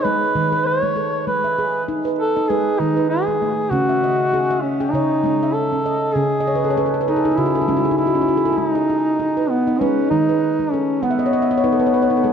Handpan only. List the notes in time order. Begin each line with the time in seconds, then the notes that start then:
Already playing: D#4 D#5
0.05 G#3 B4
0.35 D#3 G#3
0.52 B4
0.83 G#3
0.96 A4
1.27 G#3
1.44 E5
1.59 G#4
1.88 D#4
2.05 B4
2.36 D#4 D#5
2.50 G#3 B4
2.80 D#3 G#3
2.97 B4
3.28 G#3
3.42 A3
3.71 C#3 C#4
3.89 E5
4.03 D#5
4.34 G#4
4.51 E5
4.80 G#4 G5
4.93 C#3 C#5
5.24 G#3 C#4
5.43 E5
5.72 C#4
5.86 D#5
6.15 C#3 C#4
6.40 D#5
6.47 C#5
6.55 B4
6.64 A4
6.70 C#5
6.77 G#4 B4
6.86 A4
6.94 G#4
7.01 B4
7.08 A4
7.16 G#4
7.25 D#4 G#4
7.31 E4
7.38 C#3 F#4
7.46 G#4
7.55 A4
7.62 D#4
7.68 G#3 C#4 E4
7.77 F#4
7.85 G#4
7.91 D#4
7.98 E4
8.07 F#4
8.15 C#4 G#4
8.22 E4
8.29 F#4
8.37 G#4
8.45 A4
8.52 E4
8.58 G#3
8.75 D#5
8.90 G#4
9.20 D#4
9.37 B4
9.67 D#4 D#5
9.81 G#3 B4
10.11 D#3 G#3
10.29 B4
10.59 G#3
10.74 A4
11.03 G#3 F#5
11.11 E5
11.19 D#5
11.26 C#5
11.33 D#5
11.42 E5
11.51 D#5
11.58 C#5
11.64 D#4 B4
11.72 A4
11.79 B4
11.87 C#5
11.94 B4
12.02 C#5
12.10 D#4 B4
12.17 A4
12.24 G#3 G#4